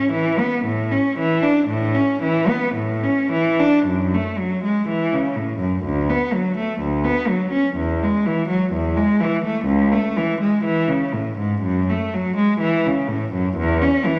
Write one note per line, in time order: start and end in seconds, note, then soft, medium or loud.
0.00 0.12 C#4 medium
0.12 0.39 E3 medium
0.38 0.66 B3 medium
0.65 0.92 A2 medium
0.92 1.19 C#4 medium
1.19 1.45 E3 medium
1.43 1.71 D4 medium
1.68 1.96 A2 medium
1.94 2.23 C#4 medium
2.23 2.50 E3 soft
2.49 2.77 B3 medium
2.75 3.03 A2 medium
3.03 3.32 C#4 medium
3.32 3.60 E3 soft
3.59 3.88 D4 medium
3.86 4.13 F#2 medium
4.14 4.40 A3 soft
4.38 4.64 F#3 soft
4.64 4.88 G#3 soft
4.88 5.12 E3 soft
5.13 5.37 C#3 soft
5.36 5.60 A2 soft
5.60 5.84 F#2 soft
5.84 6.08 D2 medium
6.10 6.33 B3 soft
6.33 6.57 F#3 soft
6.58 6.81 A3 soft
6.81 7.04 D2 medium
7.04 7.28 B3 medium
7.29 7.53 F#3 soft
7.52 7.75 C#4 soft
7.77 8.00 E2 medium
8.03 8.25 G#3 medium
8.26 8.49 E3 soft
8.49 8.71 F#3 soft
8.73 8.95 E2 medium
8.97 9.20 G#3 medium
9.20 9.43 E3 medium
9.45 9.67 A3 medium
9.66 9.90 C#2 medium
9.93 10.16 A3 medium
10.17 10.40 E3 medium
10.41 10.63 G#3 medium
10.64 10.87 E3 medium
10.88 11.12 C#3 medium
11.13 11.38 A2 soft
11.38 11.63 G#2 soft
11.62 11.88 F#2 medium
11.90 12.14 A3 medium
12.14 12.38 F#3 medium
12.37 12.60 G#3 medium
12.60 12.84 E3 medium
12.86 13.09 C#3 soft
13.08 13.32 A2 medium
13.33 13.56 F#2 medium
13.57 13.80 E2 medium
13.82 14.05 C#4 medium
14.05 14.19 E3 medium